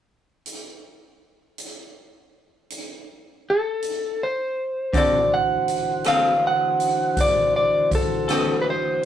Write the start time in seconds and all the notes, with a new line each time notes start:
0.46 closed hi-hat
1.58 closed hi-hat
2.70 closed hi-hat
3.50 A4
3.82 closed hi-hat
4.23 C5
4.93 D3 E3 C4 F#4 A4 C5, kick, closed hi-hat
4.98 D5
5.34 F#5
5.68 closed hi-hat
6.04 D3 C4 F#4 A4 F5, cross-stick, closed hi-hat
6.47 F#5
6.80 closed hi-hat
7.17 D5, kick, closed hi-hat
7.56 D5
7.91 A4, kick, closed hi-hat
8.28 D3 C4 F#4 A4, cross-stick, closed hi-hat
8.62 B4
8.70 C5